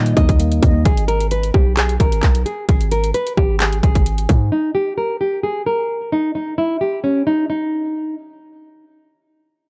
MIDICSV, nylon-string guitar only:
0, 0, Header, 1, 2, 480
1, 0, Start_track
1, 0, Key_signature, 5, "minor"
1, 0, Tempo, 458015
1, 896, Time_signature, 4, 2, 24, 8
1, 10156, End_track
2, 0, Start_track
2, 0, Title_t, "Nylon-string guitar"
2, 0, Program_c, 0, 24
2, 0, Note_on_c, 0, 75, 96
2, 123, Note_off_c, 0, 75, 0
2, 176, Note_on_c, 0, 75, 80
2, 854, Note_off_c, 0, 75, 0
2, 894, Note_on_c, 0, 68, 78
2, 1083, Note_off_c, 0, 68, 0
2, 1132, Note_on_c, 0, 70, 83
2, 1322, Note_off_c, 0, 70, 0
2, 1379, Note_on_c, 0, 71, 81
2, 1566, Note_off_c, 0, 71, 0
2, 1616, Note_on_c, 0, 67, 79
2, 1804, Note_off_c, 0, 67, 0
2, 1857, Note_on_c, 0, 68, 85
2, 2045, Note_off_c, 0, 68, 0
2, 2098, Note_on_c, 0, 70, 80
2, 2548, Note_off_c, 0, 70, 0
2, 2575, Note_on_c, 0, 68, 74
2, 2764, Note_off_c, 0, 68, 0
2, 2819, Note_on_c, 0, 68, 89
2, 3006, Note_off_c, 0, 68, 0
2, 3056, Note_on_c, 0, 70, 79
2, 3244, Note_off_c, 0, 70, 0
2, 3295, Note_on_c, 0, 71, 86
2, 3483, Note_off_c, 0, 71, 0
2, 3536, Note_on_c, 0, 67, 84
2, 3724, Note_off_c, 0, 67, 0
2, 3773, Note_on_c, 0, 68, 94
2, 3962, Note_off_c, 0, 68, 0
2, 4014, Note_on_c, 0, 68, 84
2, 4693, Note_off_c, 0, 68, 0
2, 4737, Note_on_c, 0, 63, 81
2, 4925, Note_off_c, 0, 63, 0
2, 4974, Note_on_c, 0, 67, 81
2, 5163, Note_off_c, 0, 67, 0
2, 5215, Note_on_c, 0, 70, 82
2, 5403, Note_off_c, 0, 70, 0
2, 5457, Note_on_c, 0, 67, 81
2, 5645, Note_off_c, 0, 67, 0
2, 5695, Note_on_c, 0, 68, 90
2, 5883, Note_off_c, 0, 68, 0
2, 5936, Note_on_c, 0, 70, 78
2, 6387, Note_off_c, 0, 70, 0
2, 6418, Note_on_c, 0, 63, 81
2, 6605, Note_off_c, 0, 63, 0
2, 6656, Note_on_c, 0, 63, 85
2, 6844, Note_off_c, 0, 63, 0
2, 6896, Note_on_c, 0, 64, 79
2, 7084, Note_off_c, 0, 64, 0
2, 7136, Note_on_c, 0, 67, 82
2, 7324, Note_off_c, 0, 67, 0
2, 7375, Note_on_c, 0, 61, 79
2, 7563, Note_off_c, 0, 61, 0
2, 7616, Note_on_c, 0, 63, 86
2, 7804, Note_off_c, 0, 63, 0
2, 7857, Note_on_c, 0, 63, 71
2, 8534, Note_off_c, 0, 63, 0
2, 10156, End_track
0, 0, End_of_file